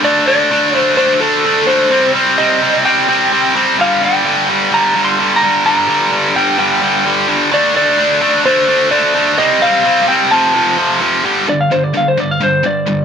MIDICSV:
0, 0, Header, 1, 3, 480
1, 0, Start_track
1, 0, Key_signature, -2, "minor"
1, 0, Tempo, 466563
1, 40, Time_signature, 4, 2, 24, 8
1, 13425, End_track
2, 0, Start_track
2, 0, Title_t, "Lead electric guitar"
2, 0, Program_c, 0, 29
2, 47, Note_on_c, 0, 74, 103
2, 271, Note_off_c, 0, 74, 0
2, 283, Note_on_c, 0, 74, 105
2, 787, Note_off_c, 0, 74, 0
2, 787, Note_on_c, 0, 72, 105
2, 965, Note_off_c, 0, 72, 0
2, 999, Note_on_c, 0, 72, 95
2, 1226, Note_off_c, 0, 72, 0
2, 1238, Note_on_c, 0, 69, 96
2, 1716, Note_on_c, 0, 72, 91
2, 1739, Note_off_c, 0, 69, 0
2, 2170, Note_off_c, 0, 72, 0
2, 2449, Note_on_c, 0, 75, 95
2, 2898, Note_off_c, 0, 75, 0
2, 2935, Note_on_c, 0, 79, 113
2, 3615, Note_off_c, 0, 79, 0
2, 3920, Note_on_c, 0, 77, 84
2, 4133, Note_off_c, 0, 77, 0
2, 4169, Note_on_c, 0, 79, 97
2, 4876, Note_on_c, 0, 82, 103
2, 4896, Note_off_c, 0, 79, 0
2, 5187, Note_off_c, 0, 82, 0
2, 5191, Note_on_c, 0, 84, 109
2, 5513, Note_off_c, 0, 84, 0
2, 5517, Note_on_c, 0, 82, 99
2, 5809, Note_off_c, 0, 82, 0
2, 5821, Note_on_c, 0, 82, 105
2, 6545, Note_on_c, 0, 79, 93
2, 6563, Note_off_c, 0, 82, 0
2, 6769, Note_off_c, 0, 79, 0
2, 6781, Note_on_c, 0, 79, 87
2, 7459, Note_off_c, 0, 79, 0
2, 7756, Note_on_c, 0, 74, 93
2, 7979, Note_off_c, 0, 74, 0
2, 7991, Note_on_c, 0, 74, 90
2, 8663, Note_off_c, 0, 74, 0
2, 8699, Note_on_c, 0, 72, 87
2, 9164, Note_off_c, 0, 72, 0
2, 9168, Note_on_c, 0, 74, 85
2, 9650, Note_off_c, 0, 74, 0
2, 9654, Note_on_c, 0, 75, 97
2, 9898, Note_on_c, 0, 77, 97
2, 9901, Note_off_c, 0, 75, 0
2, 10369, Note_off_c, 0, 77, 0
2, 10373, Note_on_c, 0, 79, 101
2, 10596, Note_off_c, 0, 79, 0
2, 10610, Note_on_c, 0, 81, 107
2, 11288, Note_off_c, 0, 81, 0
2, 11826, Note_on_c, 0, 74, 85
2, 11934, Note_off_c, 0, 74, 0
2, 11941, Note_on_c, 0, 77, 86
2, 12051, Note_off_c, 0, 77, 0
2, 12056, Note_on_c, 0, 72, 92
2, 12178, Note_off_c, 0, 72, 0
2, 12178, Note_on_c, 0, 74, 81
2, 12290, Note_off_c, 0, 74, 0
2, 12317, Note_on_c, 0, 77, 82
2, 12419, Note_off_c, 0, 77, 0
2, 12430, Note_on_c, 0, 72, 89
2, 12551, Note_off_c, 0, 72, 0
2, 12551, Note_on_c, 0, 74, 84
2, 12668, Note_off_c, 0, 74, 0
2, 12668, Note_on_c, 0, 77, 83
2, 12774, Note_off_c, 0, 77, 0
2, 12791, Note_on_c, 0, 72, 91
2, 13011, Note_off_c, 0, 72, 0
2, 13027, Note_on_c, 0, 74, 81
2, 13425, Note_off_c, 0, 74, 0
2, 13425, End_track
3, 0, Start_track
3, 0, Title_t, "Distorted electric guitar"
3, 0, Program_c, 1, 30
3, 38, Note_on_c, 1, 50, 105
3, 44, Note_on_c, 1, 57, 99
3, 49, Note_on_c, 1, 62, 105
3, 269, Note_off_c, 1, 50, 0
3, 278, Note_off_c, 1, 57, 0
3, 282, Note_on_c, 1, 50, 83
3, 283, Note_off_c, 1, 62, 0
3, 291, Note_on_c, 1, 57, 93
3, 295, Note_on_c, 1, 62, 98
3, 509, Note_off_c, 1, 50, 0
3, 514, Note_off_c, 1, 57, 0
3, 519, Note_off_c, 1, 62, 0
3, 521, Note_on_c, 1, 50, 88
3, 526, Note_on_c, 1, 57, 83
3, 532, Note_on_c, 1, 62, 97
3, 751, Note_off_c, 1, 50, 0
3, 758, Note_off_c, 1, 57, 0
3, 762, Note_off_c, 1, 62, 0
3, 764, Note_on_c, 1, 50, 93
3, 770, Note_on_c, 1, 57, 86
3, 774, Note_on_c, 1, 62, 97
3, 991, Note_off_c, 1, 50, 0
3, 994, Note_off_c, 1, 57, 0
3, 999, Note_off_c, 1, 62, 0
3, 1003, Note_on_c, 1, 50, 101
3, 1007, Note_on_c, 1, 57, 105
3, 1012, Note_on_c, 1, 62, 113
3, 1236, Note_off_c, 1, 50, 0
3, 1244, Note_off_c, 1, 57, 0
3, 1249, Note_on_c, 1, 50, 79
3, 1250, Note_off_c, 1, 62, 0
3, 1256, Note_on_c, 1, 57, 89
3, 1262, Note_on_c, 1, 62, 102
3, 1476, Note_off_c, 1, 50, 0
3, 1484, Note_off_c, 1, 57, 0
3, 1488, Note_on_c, 1, 50, 78
3, 1489, Note_off_c, 1, 62, 0
3, 1497, Note_on_c, 1, 57, 89
3, 1501, Note_on_c, 1, 62, 92
3, 1712, Note_off_c, 1, 50, 0
3, 1716, Note_off_c, 1, 57, 0
3, 1723, Note_off_c, 1, 62, 0
3, 1725, Note_on_c, 1, 50, 85
3, 1729, Note_on_c, 1, 57, 93
3, 1735, Note_on_c, 1, 62, 97
3, 1953, Note_off_c, 1, 50, 0
3, 1955, Note_off_c, 1, 57, 0
3, 1958, Note_off_c, 1, 62, 0
3, 1962, Note_on_c, 1, 48, 99
3, 1971, Note_on_c, 1, 55, 111
3, 1974, Note_on_c, 1, 60, 108
3, 2188, Note_off_c, 1, 48, 0
3, 2199, Note_off_c, 1, 60, 0
3, 2200, Note_on_c, 1, 48, 88
3, 2202, Note_off_c, 1, 55, 0
3, 2207, Note_on_c, 1, 55, 94
3, 2211, Note_on_c, 1, 60, 96
3, 2439, Note_off_c, 1, 48, 0
3, 2451, Note_off_c, 1, 60, 0
3, 2452, Note_on_c, 1, 48, 85
3, 2453, Note_off_c, 1, 55, 0
3, 2457, Note_on_c, 1, 55, 91
3, 2463, Note_on_c, 1, 60, 89
3, 2677, Note_off_c, 1, 48, 0
3, 2689, Note_on_c, 1, 48, 90
3, 2690, Note_off_c, 1, 60, 0
3, 2692, Note_off_c, 1, 55, 0
3, 2696, Note_on_c, 1, 55, 92
3, 2703, Note_on_c, 1, 60, 98
3, 2914, Note_off_c, 1, 48, 0
3, 2926, Note_on_c, 1, 48, 88
3, 2929, Note_off_c, 1, 55, 0
3, 2929, Note_off_c, 1, 60, 0
3, 2933, Note_on_c, 1, 55, 108
3, 2941, Note_on_c, 1, 60, 107
3, 3153, Note_off_c, 1, 48, 0
3, 3165, Note_on_c, 1, 48, 90
3, 3167, Note_off_c, 1, 60, 0
3, 3169, Note_off_c, 1, 55, 0
3, 3173, Note_on_c, 1, 55, 92
3, 3179, Note_on_c, 1, 60, 94
3, 3403, Note_off_c, 1, 48, 0
3, 3414, Note_off_c, 1, 60, 0
3, 3415, Note_on_c, 1, 48, 75
3, 3420, Note_off_c, 1, 55, 0
3, 3424, Note_on_c, 1, 55, 87
3, 3427, Note_on_c, 1, 60, 86
3, 3641, Note_off_c, 1, 48, 0
3, 3647, Note_off_c, 1, 60, 0
3, 3653, Note_off_c, 1, 55, 0
3, 3654, Note_on_c, 1, 48, 81
3, 3657, Note_on_c, 1, 55, 94
3, 3660, Note_on_c, 1, 60, 90
3, 3881, Note_off_c, 1, 48, 0
3, 3883, Note_off_c, 1, 60, 0
3, 3894, Note_on_c, 1, 43, 105
3, 3900, Note_off_c, 1, 55, 0
3, 3901, Note_on_c, 1, 50, 99
3, 3904, Note_on_c, 1, 55, 111
3, 4124, Note_off_c, 1, 50, 0
3, 4128, Note_off_c, 1, 43, 0
3, 4132, Note_on_c, 1, 43, 84
3, 4137, Note_on_c, 1, 50, 86
3, 4139, Note_off_c, 1, 55, 0
3, 4143, Note_on_c, 1, 55, 91
3, 4367, Note_off_c, 1, 43, 0
3, 4368, Note_off_c, 1, 50, 0
3, 4372, Note_on_c, 1, 43, 77
3, 4377, Note_off_c, 1, 55, 0
3, 4380, Note_on_c, 1, 50, 90
3, 4381, Note_on_c, 1, 55, 100
3, 4606, Note_off_c, 1, 50, 0
3, 4607, Note_off_c, 1, 43, 0
3, 4611, Note_on_c, 1, 43, 82
3, 4617, Note_off_c, 1, 55, 0
3, 4619, Note_on_c, 1, 50, 83
3, 4621, Note_on_c, 1, 55, 98
3, 4838, Note_off_c, 1, 43, 0
3, 4847, Note_off_c, 1, 50, 0
3, 4849, Note_off_c, 1, 55, 0
3, 4851, Note_on_c, 1, 43, 93
3, 4860, Note_on_c, 1, 50, 99
3, 4861, Note_on_c, 1, 55, 115
3, 5076, Note_off_c, 1, 43, 0
3, 5084, Note_off_c, 1, 50, 0
3, 5088, Note_on_c, 1, 43, 81
3, 5091, Note_off_c, 1, 55, 0
3, 5096, Note_on_c, 1, 50, 87
3, 5103, Note_on_c, 1, 55, 90
3, 5328, Note_off_c, 1, 43, 0
3, 5336, Note_off_c, 1, 50, 0
3, 5338, Note_off_c, 1, 55, 0
3, 5340, Note_on_c, 1, 43, 73
3, 5348, Note_on_c, 1, 50, 89
3, 5350, Note_on_c, 1, 55, 89
3, 5571, Note_off_c, 1, 43, 0
3, 5577, Note_off_c, 1, 50, 0
3, 5583, Note_off_c, 1, 55, 0
3, 5584, Note_on_c, 1, 43, 82
3, 5589, Note_on_c, 1, 50, 94
3, 5595, Note_on_c, 1, 55, 92
3, 5804, Note_off_c, 1, 43, 0
3, 5810, Note_off_c, 1, 50, 0
3, 5814, Note_off_c, 1, 55, 0
3, 5817, Note_on_c, 1, 43, 99
3, 5822, Note_on_c, 1, 50, 100
3, 5826, Note_on_c, 1, 55, 119
3, 6042, Note_off_c, 1, 43, 0
3, 6050, Note_off_c, 1, 50, 0
3, 6054, Note_off_c, 1, 55, 0
3, 6054, Note_on_c, 1, 43, 81
3, 6062, Note_on_c, 1, 50, 92
3, 6067, Note_on_c, 1, 55, 104
3, 6281, Note_off_c, 1, 43, 0
3, 6286, Note_off_c, 1, 50, 0
3, 6288, Note_off_c, 1, 55, 0
3, 6293, Note_on_c, 1, 43, 87
3, 6298, Note_on_c, 1, 50, 89
3, 6301, Note_on_c, 1, 55, 104
3, 6522, Note_off_c, 1, 43, 0
3, 6526, Note_off_c, 1, 50, 0
3, 6530, Note_off_c, 1, 55, 0
3, 6534, Note_on_c, 1, 43, 84
3, 6538, Note_on_c, 1, 50, 92
3, 6542, Note_on_c, 1, 55, 96
3, 6758, Note_off_c, 1, 43, 0
3, 6763, Note_off_c, 1, 50, 0
3, 6769, Note_off_c, 1, 55, 0
3, 6771, Note_on_c, 1, 43, 99
3, 6775, Note_on_c, 1, 50, 104
3, 6781, Note_on_c, 1, 55, 110
3, 7000, Note_off_c, 1, 43, 0
3, 7005, Note_off_c, 1, 50, 0
3, 7010, Note_off_c, 1, 55, 0
3, 7013, Note_on_c, 1, 43, 86
3, 7017, Note_on_c, 1, 50, 90
3, 7022, Note_on_c, 1, 55, 89
3, 7233, Note_off_c, 1, 43, 0
3, 7243, Note_off_c, 1, 50, 0
3, 7246, Note_on_c, 1, 43, 75
3, 7250, Note_off_c, 1, 55, 0
3, 7255, Note_on_c, 1, 50, 83
3, 7262, Note_on_c, 1, 55, 93
3, 7475, Note_off_c, 1, 43, 0
3, 7482, Note_off_c, 1, 50, 0
3, 7487, Note_on_c, 1, 43, 84
3, 7488, Note_off_c, 1, 55, 0
3, 7494, Note_on_c, 1, 50, 103
3, 7500, Note_on_c, 1, 55, 98
3, 7716, Note_off_c, 1, 50, 0
3, 7719, Note_off_c, 1, 43, 0
3, 7725, Note_off_c, 1, 55, 0
3, 7728, Note_on_c, 1, 50, 98
3, 7736, Note_on_c, 1, 57, 101
3, 7738, Note_on_c, 1, 62, 107
3, 7963, Note_off_c, 1, 50, 0
3, 7970, Note_off_c, 1, 57, 0
3, 7972, Note_off_c, 1, 62, 0
3, 7975, Note_on_c, 1, 50, 92
3, 7982, Note_on_c, 1, 57, 96
3, 7985, Note_on_c, 1, 62, 101
3, 8200, Note_off_c, 1, 50, 0
3, 8206, Note_off_c, 1, 57, 0
3, 8209, Note_off_c, 1, 62, 0
3, 8212, Note_on_c, 1, 50, 85
3, 8218, Note_on_c, 1, 57, 89
3, 8221, Note_on_c, 1, 62, 105
3, 8439, Note_off_c, 1, 50, 0
3, 8445, Note_off_c, 1, 57, 0
3, 8449, Note_off_c, 1, 62, 0
3, 8451, Note_on_c, 1, 50, 82
3, 8457, Note_on_c, 1, 57, 96
3, 8461, Note_on_c, 1, 62, 101
3, 8681, Note_off_c, 1, 50, 0
3, 8686, Note_off_c, 1, 57, 0
3, 8689, Note_off_c, 1, 62, 0
3, 8693, Note_on_c, 1, 50, 91
3, 8699, Note_on_c, 1, 57, 105
3, 8701, Note_on_c, 1, 62, 102
3, 8918, Note_off_c, 1, 50, 0
3, 8922, Note_off_c, 1, 57, 0
3, 8926, Note_off_c, 1, 62, 0
3, 8930, Note_on_c, 1, 50, 82
3, 8934, Note_on_c, 1, 57, 96
3, 8938, Note_on_c, 1, 62, 96
3, 9154, Note_off_c, 1, 50, 0
3, 9165, Note_off_c, 1, 57, 0
3, 9166, Note_off_c, 1, 62, 0
3, 9166, Note_on_c, 1, 50, 89
3, 9177, Note_on_c, 1, 57, 91
3, 9179, Note_on_c, 1, 62, 97
3, 9397, Note_off_c, 1, 50, 0
3, 9402, Note_off_c, 1, 57, 0
3, 9408, Note_off_c, 1, 62, 0
3, 9409, Note_on_c, 1, 50, 81
3, 9414, Note_on_c, 1, 57, 96
3, 9421, Note_on_c, 1, 62, 98
3, 9638, Note_off_c, 1, 50, 0
3, 9640, Note_off_c, 1, 57, 0
3, 9644, Note_off_c, 1, 62, 0
3, 9649, Note_on_c, 1, 48, 109
3, 9661, Note_on_c, 1, 55, 100
3, 9664, Note_on_c, 1, 60, 104
3, 9881, Note_off_c, 1, 48, 0
3, 9886, Note_off_c, 1, 55, 0
3, 9890, Note_off_c, 1, 60, 0
3, 9893, Note_on_c, 1, 48, 82
3, 9898, Note_on_c, 1, 55, 84
3, 9903, Note_on_c, 1, 60, 95
3, 10119, Note_off_c, 1, 48, 0
3, 10123, Note_off_c, 1, 55, 0
3, 10128, Note_off_c, 1, 60, 0
3, 10131, Note_on_c, 1, 48, 92
3, 10135, Note_on_c, 1, 55, 98
3, 10140, Note_on_c, 1, 60, 92
3, 10360, Note_off_c, 1, 48, 0
3, 10362, Note_off_c, 1, 55, 0
3, 10367, Note_off_c, 1, 60, 0
3, 10372, Note_on_c, 1, 48, 85
3, 10374, Note_on_c, 1, 55, 98
3, 10379, Note_on_c, 1, 60, 89
3, 10598, Note_off_c, 1, 48, 0
3, 10599, Note_off_c, 1, 55, 0
3, 10601, Note_off_c, 1, 60, 0
3, 10609, Note_on_c, 1, 41, 101
3, 10613, Note_on_c, 1, 48, 95
3, 10619, Note_on_c, 1, 53, 111
3, 10828, Note_off_c, 1, 41, 0
3, 10833, Note_off_c, 1, 48, 0
3, 10840, Note_off_c, 1, 53, 0
3, 10840, Note_on_c, 1, 41, 86
3, 10845, Note_on_c, 1, 48, 97
3, 10852, Note_on_c, 1, 53, 98
3, 11072, Note_off_c, 1, 41, 0
3, 11078, Note_off_c, 1, 48, 0
3, 11082, Note_off_c, 1, 53, 0
3, 11084, Note_on_c, 1, 41, 76
3, 11090, Note_on_c, 1, 48, 75
3, 11095, Note_on_c, 1, 53, 92
3, 11311, Note_off_c, 1, 41, 0
3, 11316, Note_off_c, 1, 48, 0
3, 11321, Note_off_c, 1, 53, 0
3, 11323, Note_on_c, 1, 41, 74
3, 11328, Note_on_c, 1, 48, 95
3, 11333, Note_on_c, 1, 53, 93
3, 11552, Note_off_c, 1, 41, 0
3, 11555, Note_off_c, 1, 48, 0
3, 11557, Note_off_c, 1, 53, 0
3, 11563, Note_on_c, 1, 43, 85
3, 11572, Note_on_c, 1, 50, 82
3, 11576, Note_on_c, 1, 55, 98
3, 11792, Note_off_c, 1, 43, 0
3, 11796, Note_off_c, 1, 50, 0
3, 11798, Note_off_c, 1, 55, 0
3, 11805, Note_on_c, 1, 43, 69
3, 11809, Note_on_c, 1, 50, 80
3, 12023, Note_off_c, 1, 43, 0
3, 12024, Note_off_c, 1, 50, 0
3, 12049, Note_on_c, 1, 43, 71
3, 12051, Note_on_c, 1, 50, 78
3, 12264, Note_off_c, 1, 43, 0
3, 12265, Note_off_c, 1, 50, 0
3, 12279, Note_on_c, 1, 43, 71
3, 12285, Note_on_c, 1, 50, 85
3, 12499, Note_off_c, 1, 43, 0
3, 12502, Note_off_c, 1, 50, 0
3, 12526, Note_on_c, 1, 43, 69
3, 12530, Note_on_c, 1, 50, 79
3, 12742, Note_off_c, 1, 43, 0
3, 12744, Note_off_c, 1, 50, 0
3, 12764, Note_on_c, 1, 43, 71
3, 12769, Note_on_c, 1, 50, 75
3, 12981, Note_off_c, 1, 43, 0
3, 12984, Note_off_c, 1, 50, 0
3, 12999, Note_on_c, 1, 43, 66
3, 13001, Note_on_c, 1, 50, 73
3, 13218, Note_off_c, 1, 43, 0
3, 13219, Note_off_c, 1, 50, 0
3, 13236, Note_on_c, 1, 43, 65
3, 13241, Note_on_c, 1, 50, 75
3, 13425, Note_off_c, 1, 43, 0
3, 13425, Note_off_c, 1, 50, 0
3, 13425, End_track
0, 0, End_of_file